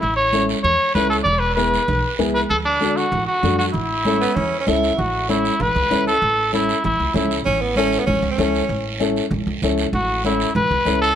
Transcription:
0.01 0.52 A1 medium
0.01 0.16 E4 medium
0.01 long guiro medium
0.16 0.46 C#5 loud
0.33 0.55 C#4 medium
0.33 0.55 E4 medium
0.33 0.55 A4 medium
0.33 high conga medium
0.33 short guiro medium
0.49 short guiro medium
0.64 0.76 E2 medium
0.64 0.93 C#5 loud
0.64 low conga medium
0.95 1.20 C#2 medium
0.95 1.17 C#4 medium
0.95 1.17 E4 medium
0.95 1.17 A4 medium
0.95 1.09 B4 loud
0.95 high conga medium
0.95 short guiro medium
1.10 1.17 A4 medium
1.10 short guiro medium
1.24 1.76 E1 medium
1.24 1.41 D5 loud
1.24 low conga medium
1.24 long guiro medium
1.39 1.55 B4 loud
1.55 1.79 B3 medium
1.55 1.79 E4 medium
1.55 1.79 G#4 medium
1.55 2.14 B4 loud
1.55 high conga medium
1.55 short guiro medium
1.74 short guiro medium
1.88 2.01 B1 loud
1.88 low conga medium
1.88 long guiro medium
2.19 2.44 C#2 medium
2.19 2.41 B3 medium
2.19 2.41 E4 medium
2.19 2.41 G#4 medium
2.19 high conga medium
2.19 low conga medium
2.19 short guiro medium
2.34 2.41 B4 loud
2.34 short guiro medium
2.50 3.00 D2 medium
2.50 2.57 A4 loud
2.50 low conga medium
2.50 long guiro medium
2.65 2.98 D4 medium
2.81 3.03 D4 medium
2.81 3.03 F#4 medium
2.81 3.03 A4 medium
2.81 high conga medium
2.81 short guiro medium
2.97 3.27 F#4 medium
2.97 short guiro medium
3.12 3.25 A1 loud
3.12 low conga medium
3.12 long guiro medium
3.27 3.56 F#4 loud
3.42 3.68 F#2 medium
3.42 3.65 D4 medium
3.42 3.65 F#4 medium
3.42 3.65 A4 medium
3.42 high conga medium
3.42 low conga medium
3.42 short guiro medium
3.59 3.66 F#4 loud
3.59 short guiro medium
3.74 4.24 A1 medium
3.74 4.63 E4 medium
3.74 low conga medium
3.74 long guiro medium
4.05 4.20 A3 medium
4.05 4.27 C#4 medium
4.05 4.27 E4 medium
4.05 4.28 A4 medium
4.05 high conga medium
4.05 short guiro medium
4.21 4.38 B3 medium
4.21 short guiro medium
4.36 4.49 E2 loud
4.36 4.60 C#4 medium
4.36 low conga medium
4.36 long guiro medium
4.60 4.69 C#4 medium
4.67 4.92 C#2 medium
4.67 4.89 C#4 medium
4.67 4.89 E4 medium
4.67 4.98 E4 medium
4.67 4.89 A4 loud
4.67 high conga medium
4.67 short guiro medium
4.83 short guiro medium
4.98 5.48 A1 medium
4.98 5.27 F#4 medium
4.98 low conga medium
4.98 long guiro medium
5.29 5.51 C#4 medium
5.29 5.51 E4 medium
5.29 5.63 E4 medium
5.29 5.51 A4 medium
5.29 high conga medium
5.29 short guiro medium
5.45 short guiro medium
5.60 5.72 A1 medium
5.60 6.07 B4 loud
5.60 low conga medium
5.60 long guiro medium
5.76 5.82 C#2 loud
5.90 6.16 C#2 medium
5.90 6.12 C#4 medium
5.90 6.13 E4 medium
5.90 6.13 A4 medium
5.90 high conga medium
5.90 short guiro medium
6.07 6.50 A4 loud
6.07 short guiro medium
6.22 6.72 A1 loud
6.22 long guiro medium
6.52 6.75 C#4 medium
6.52 6.75 E4 medium
6.52 6.83 E4 medium
6.52 6.75 A4 medium
6.52 high conga medium
6.52 short guiro medium
6.69 short guiro medium
6.84 6.97 A1 loud
6.84 7.14 E4 medium
6.84 low conga medium
6.84 long guiro medium
7.00 7.06 C#2 medium
7.14 7.40 C#2 loud
7.14 7.36 C#4 medium
7.14 7.37 E4 medium
7.14 7.38 E4 medium
7.14 7.37 A4 medium
7.14 high conga medium
7.14 low conga medium
7.14 short guiro medium
7.31 short guiro medium
7.45 7.96 A1 medium
7.45 7.63 C#4 loud
7.45 low conga medium
7.45 long guiro medium
7.62 7.76 B3 medium
7.76 8.01 C#4 loud
7.76 7.99 C#4 medium
7.76 7.99 E4 medium
7.76 7.99 A4 loud
7.76 high conga medium
7.76 short guiro medium
7.93 short guiro medium
8.00 8.06 B3 medium
8.06 8.20 A1 medium
8.06 8.29 C#4 medium
8.06 high conga medium
8.06 low conga medium
8.06 long guiro medium
8.22 8.29 C#2 loud
8.31 8.89 C#4 medium
8.38 8.63 C#2 loud
8.38 8.60 C#4 medium
8.38 8.60 E4 medium
8.38 8.61 A4 loud
8.38 high conga medium
8.38 low conga medium
8.38 short guiro medium
8.55 short guiro medium
8.69 9.19 A1 loud
8.69 long guiro medium
9.00 9.22 C#4 medium
9.00 9.22 E4 medium
9.00 9.23 A4 loud
9.00 high conga medium
9.00 short guiro medium
9.16 short guiro medium
9.31 9.43 A1 medium
9.31 high conga medium
9.31 low conga medium
9.31 long guiro medium
9.47 9.53 C#2 medium
9.62 9.87 C#2 medium
9.62 9.85 C#4 medium
9.62 9.85 E4 medium
9.62 9.85 A4 loud
9.62 high conga medium
9.62 low conga medium
9.62 short guiro medium
9.78 short guiro medium
9.93 10.43 A1 loud
9.93 10.23 F#4 medium
9.93 low conga medium
9.93 long guiro medium
10.24 10.46 C#4 medium
10.24 10.46 E4 medium
10.24 10.54 E4 medium
10.24 10.47 A4 medium
10.24 high conga medium
10.24 short guiro medium
10.40 short guiro medium
10.55 10.67 A1 medium
10.55 10.99 B4 loud
10.55 high conga medium
10.55 low conga medium
10.55 long guiro medium
10.71 10.77 C#2 medium
10.85 11.11 C#2 medium
10.85 11.08 C#4 medium
10.85 11.08 E4 medium
10.85 11.08 A4 medium
10.85 high conga medium
10.85 short guiro medium
11.02 11.15 A4 loud
11.02 short guiro medium

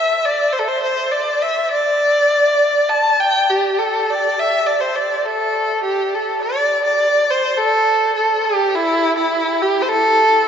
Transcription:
0.00 0.27 E5 medium
0.25 0.54 D5 medium
0.53 0.60 C5 medium
0.59 0.70 A4 medium
0.68 0.82 C5 medium
0.83 1.13 C5 medium
1.12 1.44 D5 medium
1.43 1.71 E5 medium
1.72 2.91 D5 medium
2.89 3.21 A5 medium
3.20 3.52 G5 medium
3.50 3.80 G4 medium
3.79 4.12 A4 medium
4.10 4.41 D5 medium
4.40 4.68 E5 medium
4.67 4.82 D5 medium
4.81 4.97 C5 medium
4.95 5.27 D5 medium
5.26 5.82 A4 medium
5.84 6.16 G4 medium
6.14 6.42 A4 medium
6.42 6.82 D5 medium
6.85 7.32 D5 medium
7.30 7.59 C5 medium
7.58 8.15 A4 medium
8.16 8.46 A4 medium
8.45 8.77 G4 medium
8.75 9.16 E4 medium
9.16 9.64 E4 medium
9.62 9.84 G4 medium
9.82 9.90 C5 medium
9.89 10.48 A4 medium

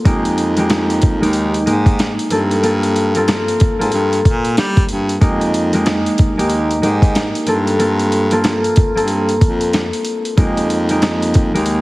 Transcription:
0.00 1.63 C4 medium
0.00 1.16 F4 medium
0.00 0.11 A4 loud
0.05 1.18 F2 loud
0.05 0.56 G#3 loud
0.05 0.53 A#3 medium
0.05 0.53 D#4 medium
0.05 0.53 G4 loud
0.05 kick loud
0.05 closed hi-hat medium
0.25 closed hi-hat medium
0.38 closed hi-hat medium
0.57 1.20 G#3 medium
0.57 1.16 A#3 medium
0.57 1.16 D#4 medium
0.57 1.16 G4 loud
0.57 closed hi-hat medium
0.70 snare loud
0.70 snare medium
0.70 closed hi-hat medium
0.90 closed hi-hat medium
1.02 kick medium
1.02 closed hi-hat medium
1.21 1.60 D#2 medium
1.21 1.65 G#3 medium
1.21 1.63 A#3 medium
1.21 1.64 D#4 medium
1.21 1.64 G4 loud
1.21 closed hi-hat medium
1.33 closed hi-hat medium
1.54 closed hi-hat medium
1.66 2.11 G#2 medium
1.66 2.36 G#3 loud
1.66 2.29 A#3 medium
1.66 2.31 D#4 medium
1.66 2.32 G4 loud
1.66 closed hi-hat medium
1.86 kick loud
1.86 closed hi-hat medium
1.99 snare loud
1.99 snare medium
1.99 closed hi-hat medium
2.19 closed hi-hat medium
2.30 3.57 G2 loud
2.30 2.54 A#3 medium
2.30 2.54 C4 medium
2.30 2.54 F4 medium
2.30 2.55 A4 loud
2.30 closed hi-hat medium
2.51 closed hi-hat medium
2.62 3.10 A#3 medium
2.62 3.11 C4 medium
2.62 3.11 F4 medium
2.62 3.11 A4 loud
2.62 closed hi-hat medium
2.83 closed hi-hat medium
2.96 closed hi-hat medium
3.15 3.74 A#3 medium
3.15 3.74 C4 medium
3.15 3.74 F4 medium
3.15 3.74 A4 loud
3.15 closed hi-hat medium
3.28 snare loud
3.28 snare medium
3.28 closed hi-hat medium
3.48 closed hi-hat medium
3.60 kick medium
3.60 closed hi-hat medium
3.79 3.91 G#2 medium
3.79 5.21 A#3 medium
3.79 6.79 C4 medium
3.79 6.32 F4 medium
3.79 5.27 A4 loud
3.79 closed hi-hat medium
3.92 4.20 G2 loud
3.92 closed hi-hat medium
4.13 closed hi-hat medium
4.25 4.52 A#2 medium
4.25 kick medium
4.25 closed hi-hat medium
4.45 closed hi-hat medium
4.57 4.84 G3 loud
4.57 snare loud
4.57 closed hi-hat medium
4.77 kick loud
4.77 closed hi-hat medium
4.89 5.17 G2 medium
4.89 closed hi-hat medium
5.09 closed hi-hat medium
5.21 6.06 F2 loud
5.21 5.72 G#3 loud
5.21 5.69 A#3 medium
5.21 5.69 D#4 medium
5.21 5.69 G4 medium
5.21 kick loud
5.21 closed hi-hat medium
5.41 closed hi-hat soft
5.54 closed hi-hat medium
5.73 6.36 G#3 medium
5.73 6.32 A#3 medium
5.73 6.32 D#4 medium
5.73 6.32 G4 loud
5.73 closed hi-hat medium
5.86 snare loud
5.86 snare medium
5.86 closed hi-hat medium
6.06 closed hi-hat medium
6.18 kick medium
6.18 closed hi-hat medium
6.37 6.76 D#2 medium
6.37 6.81 G#3 medium
6.37 6.80 A#3 medium
6.37 6.80 D#4 medium
6.37 6.80 G4 loud
6.37 closed hi-hat medium
6.50 closed hi-hat medium
6.71 closed hi-hat medium
6.82 7.27 G#2 medium
6.82 7.52 G#3 medium
6.82 7.45 A#3 medium
6.82 7.47 D#4 medium
6.82 7.48 G4 loud
6.82 closed hi-hat medium
7.02 kick loud
7.02 closed hi-hat medium
7.15 snare loud
7.15 snare medium
7.15 closed hi-hat medium
7.35 closed hi-hat medium
7.47 8.73 G2 loud
7.47 7.70 A#3 medium
7.47 7.70 C4 medium
7.47 7.70 F4 medium
7.47 7.71 A4 loud
7.47 closed hi-hat medium
7.67 closed hi-hat medium
7.79 8.27 A#3 medium
7.79 8.27 C4 medium
7.79 8.27 F4 medium
7.79 8.27 A4 loud
7.79 closed hi-hat medium
7.99 closed hi-hat medium
8.12 closed hi-hat medium
8.31 8.90 A#3 loud
8.31 8.90 C4 medium
8.31 8.90 F4 medium
8.31 8.90 A4 loud
8.31 closed hi-hat medium
8.44 snare loud
8.44 snare medium
8.44 closed hi-hat medium
8.64 closed hi-hat medium
8.76 kick medium
8.76 closed hi-hat medium
8.95 9.34 G2 medium
8.95 10.37 A#3 loud
8.95 11.81 C4 medium
8.95 11.49 F4 medium
8.95 10.43 A4 loud
8.95 closed hi-hat medium
9.08 closed hi-hat medium
9.29 closed hi-hat medium
9.41 9.85 F2 medium
9.41 kick medium
9.41 closed hi-hat medium
9.61 closed hi-hat medium
9.73 snare loud
9.73 snare medium
9.73 closed hi-hat medium
9.93 closed hi-hat medium
10.05 closed hi-hat medium
10.25 closed hi-hat soft
10.37 11.51 F2 loud
10.37 10.88 G#3 loud
10.37 10.85 A#3 medium
10.37 10.85 D#4 medium
10.37 10.86 G4 loud
10.37 kick loud
10.37 closed hi-hat medium
10.57 closed hi-hat medium
10.70 closed hi-hat medium
10.89 11.52 G#3 medium
10.89 11.48 A#3 medium
10.89 11.48 D#4 medium
10.89 11.48 G4 loud
10.89 closed hi-hat medium
11.02 snare loud
11.02 snare medium
11.02 closed hi-hat medium
11.22 closed hi-hat medium
11.34 kick medium
11.34 closed hi-hat medium
11.53 11.81 D#2 medium
11.53 11.81 G#3 medium
11.53 11.81 A#3 medium
11.53 11.81 D#4 medium
11.53 11.81 G4 loud
11.53 closed hi-hat medium
11.66 closed hi-hat medium

